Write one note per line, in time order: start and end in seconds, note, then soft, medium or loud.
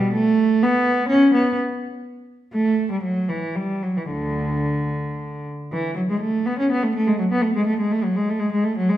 0.00 0.15 G3 medium
0.14 0.61 A3 medium
0.63 1.09 B3 medium
1.09 1.32 C#4 medium
1.34 1.57 B3 medium
2.53 2.87 A3 medium
2.91 3.03 G3 medium
3.03 3.28 F#3 medium
3.29 3.55 E3 medium
3.56 3.82 G3 medium
3.83 3.96 F#3 medium
3.98 4.10 E3 soft
4.11 4.87 D2 soft
4.11 5.43 D3 medium
5.72 5.95 E3 medium
5.96 6.01 F#3 medium
6.10 6.22 G#3 medium
6.21 6.46 A3 medium
6.46 6.59 B3 medium
6.59 6.71 C#4 medium
6.71 6.84 B3 medium
6.83 6.94 A3 medium
6.95 7.08 A3 medium
7.07 7.20 G#3 medium
7.19 7.24 F#3 medium
7.32 7.44 B3 medium
7.42 7.55 A3 medium
7.56 7.68 G#3 medium
7.66 7.79 A3 medium
7.80 7.92 G#3 medium
7.92 8.04 A3 medium
8.04 8.16 F#3 medium
8.16 8.28 G#3 medium
8.29 8.41 A3 medium
8.39 8.51 G#3 medium
8.52 8.65 G#3 medium
8.64 8.77 A3 medium
8.78 8.90 F#3 medium
8.89 8.97 G#3 medium